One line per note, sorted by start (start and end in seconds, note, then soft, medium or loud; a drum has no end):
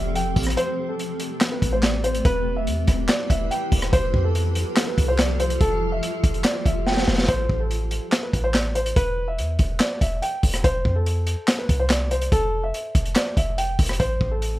0.00 0.35 F1 loud
0.00 0.54 F3 medium
0.00 2.21 C4 medium
0.00 2.21 G4 medium
0.00 0.54 A4 medium
0.00 0.13 E5 medium
0.15 0.34 G5 medium
0.15 closed hi-hat medium
0.36 0.56 A1 loud
0.36 kick loud
0.36 closed hi-hat soft
0.36 open hi-hat medium
0.43 cross-stick loud
0.43 closed hi-hat medium
0.50 closed hi-hat medium
0.57 2.23 A3 medium
0.57 0.87 C5 loud
0.57 closed hi-hat medium
0.89 1.48 A4 medium
0.99 closed hi-hat medium
1.20 closed hi-hat medium
1.41 snare loud
1.41 clap loud
1.41 closed hi-hat medium
1.52 1.70 B4 medium
1.62 2.23 A1 loud
1.62 kick medium
1.62 closed hi-hat medium
1.73 1.82 C5 medium
1.83 2.02 D5 medium
1.83 snare loud
1.83 clap medium
1.83 closed hi-hat medium
2.04 2.23 C5 medium
2.04 closed hi-hat medium
2.15 closed hi-hat medium
2.25 2.68 E1 loud
2.25 3.91 E3 medium
2.25 3.91 E4 medium
2.25 7.25 G4 medium
2.25 3.91 B4 medium
2.25 2.55 B4 loud
2.25 kick loud
2.25 closed hi-hat medium
2.56 3.06 E5 medium
2.67 2.87 E2 loud
2.67 closed hi-hat medium
2.87 3.08 E1 loud
2.87 kick loud
2.87 cross-stick medium
2.87 closed hi-hat medium
3.09 3.28 D5 medium
3.09 snare loud
3.09 clap loud
3.09 closed hi-hat medium
3.30 3.50 E1 loud
3.30 3.49 E5 medium
3.30 kick medium
3.30 closed hi-hat medium
3.51 3.70 G5 medium
3.51 closed hi-hat medium
3.72 3.92 E1 loud
3.72 kick loud
3.72 closed hi-hat medium
3.72 open hi-hat medium
3.82 cross-stick loud
3.82 closed hi-hat medium
3.93 4.13 F1 loud
3.93 7.25 F3 medium
3.93 7.25 F4 medium
3.93 7.25 A4 medium
3.93 4.22 C5 loud
3.93 kick loud
3.93 closed hi-hat medium
4.14 4.64 F2 loud
4.14 kick loud
4.24 4.83 A4 medium
4.35 closed hi-hat medium
4.55 closed hi-hat medium
4.77 snare loud
4.77 clap loud
4.77 closed hi-hat medium
4.87 5.06 B4 medium
4.98 5.58 C2 loud
4.98 kick medium
4.98 closed hi-hat medium
5.08 5.18 C5 medium
5.19 5.37 D5 medium
5.19 snare loud
5.19 clap medium
5.19 closed hi-hat medium
5.40 5.58 C5 medium
5.40 closed hi-hat medium
5.50 closed hi-hat medium
5.61 6.01 F1 loud
5.61 5.90 A4 loud
5.61 kick loud
5.61 closed hi-hat medium
5.92 6.41 E5 medium
6.03 closed hi-hat medium
6.24 6.44 F1 loud
6.24 kick loud
6.24 closed hi-hat medium
6.34 closed hi-hat soft
6.44 6.63 D5 medium
6.44 snare loud
6.44 clap loud
6.44 closed hi-hat medium
6.66 7.06 F1 loud
6.66 6.84 E5 medium
6.66 kick medium
6.66 closed hi-hat medium
6.87 7.05 G5 medium
6.87 snare medium
6.92 snare medium
6.97 snare medium
7.02 snare medium
7.08 7.28 F1 loud
7.08 snare loud
7.13 snare medium
7.18 snare loud
7.23 snare loud
7.28 7.49 A1 loud
7.28 7.58 C5 loud
7.28 kick loud
7.28 closed hi-hat medium
7.49 8.00 A1 loud
7.49 kick loud
7.60 8.19 A4 medium
7.71 closed hi-hat medium
7.91 closed hi-hat medium
8.12 snare loud
8.12 clap loud
8.12 closed hi-hat medium
8.23 8.42 B4 medium
8.33 8.94 A1 loud
8.33 kick medium
8.33 closed hi-hat medium
8.44 8.53 C5 medium
8.54 8.73 D5 medium
8.54 snare loud
8.54 clap medium
8.54 closed hi-hat medium
8.75 8.94 C5 medium
8.75 closed hi-hat medium
8.86 closed hi-hat medium
8.96 9.40 E1 loud
8.96 9.26 B4 loud
8.96 kick loud
8.96 closed hi-hat medium
9.28 9.77 E5 medium
9.38 9.58 E2 loud
9.38 closed hi-hat medium
9.59 9.79 E1 loud
9.59 kick loud
9.59 closed hi-hat medium
9.80 9.99 D5 medium
9.80 snare loud
9.80 clap loud
9.80 closed hi-hat medium
10.01 10.21 E1 loud
10.01 10.20 E5 medium
10.01 kick medium
10.01 closed hi-hat medium
10.22 10.41 G5 medium
10.22 closed hi-hat medium
10.43 10.63 E1 loud
10.43 kick loud
10.43 closed hi-hat medium
10.43 open hi-hat medium
10.54 cross-stick loud
10.54 closed hi-hat medium
10.64 10.84 F1 loud
10.64 10.94 C5 loud
10.64 kick loud
10.64 closed hi-hat medium
10.85 11.36 F2 loud
10.85 kick loud
10.96 11.55 A4 medium
11.06 closed hi-hat medium
11.27 closed hi-hat medium
11.48 snare loud
11.48 clap loud
11.48 closed hi-hat medium
11.59 11.77 B4 medium
11.69 12.29 C2 loud
11.69 kick medium
11.69 closed hi-hat medium
11.80 11.89 C5 medium
11.90 12.09 D5 medium
11.90 snare loud
11.90 clap medium
11.90 closed hi-hat medium
12.11 12.30 C5 medium
12.11 closed hi-hat medium
12.22 closed hi-hat medium
12.32 12.72 F1 loud
12.32 12.62 A4 loud
12.32 kick loud
12.32 closed hi-hat medium
12.63 13.13 E5 medium
12.74 closed hi-hat medium
12.95 13.15 F1 loud
12.95 kick loud
12.95 closed hi-hat medium
13.05 closed hi-hat soft
13.16 13.35 D5 medium
13.16 snare loud
13.16 clap loud
13.16 closed hi-hat medium
13.37 13.77 F1 loud
13.37 13.56 E5 medium
13.37 kick medium
13.37 closed hi-hat medium
13.58 13.77 G5 medium
13.58 closed hi-hat medium
13.79 13.99 F1 loud
13.79 kick loud
13.79 closed hi-hat soft
13.79 open hi-hat medium
13.86 cross-stick loud
13.86 closed hi-hat medium
13.93 closed hi-hat medium
14.00 14.20 A1 loud
14.00 14.29 C5 loud
14.00 kick loud
14.00 closed hi-hat medium
14.21 14.59 A1 loud
14.21 kick loud
14.31 14.59 A4 medium
14.42 closed hi-hat medium